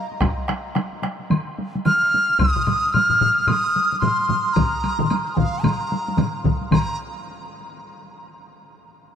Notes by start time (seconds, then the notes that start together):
0.12 taiko high
0.21 taiko rim, taiko, taiko high, high woodblock
0.38 taiko high
0.48 taiko rim, taiko high, high woodblock
0.75 taiko rim, taiko high, high woodblock
0.93 taiko high
1.02 taiko rim, taiko high
1.19 taiko high
1.30 taiko mid, taiko high, high woodblock
1.48 taiko high
1.58 taiko high
1.75 taiko high
1.85 F6, taiko mid, taiko high, high woodblock
2.04 taiko high
2.14 taiko high
2.30 taiko high
2.38 D#6, taiko, taiko low-mid, taiko high, high woodblock
2.57 taiko low-mid, taiko high
2.67 taiko low-mid, taiko high, high woodblock
2.85 taiko high
2.93 F6, taiko low-mid, taiko high, high woodblock
3.10 taiko low-mid, taiko high
3.21 taiko low-mid, taiko high
3.38 taiko high
3.44 D#6 F6, taiko low-mid, high woodblock
3.49 taiko high
3.66 taiko high
3.76 taiko high
3.93 taiko high
4.00 C6, taiko low-mid, taiko high, high woodblock
4.19 taiko high
4.29 taiko low-mid, taiko high
4.46 taiko high
4.54 A#5, taiko, taiko low-mid, taiko mid, taiko high, high woodblock
4.74 taiko high
4.84 taiko high, high woodblock
4.99 taiko low-mid, taiko mid
5.10 taiko high, high woodblock
5.27 taiko high
5.34 F5 G#5, taiko, taiko low-mid, taiko mid, taiko high
5.54 taiko high
5.62 A#5, taiko low-mid, taiko mid, taiko high, high woodblock
5.82 taiko high
5.92 taiko high
6.08 taiko high
6.17 taiko low-mid, taiko mid, taiko high, high woodblock
6.34 taiko high
6.45 taiko, taiko low-mid, taiko mid, taiko high
6.61 taiko high
6.71 A#5, taiko, taiko low-mid, taiko mid, taiko high, high woodblock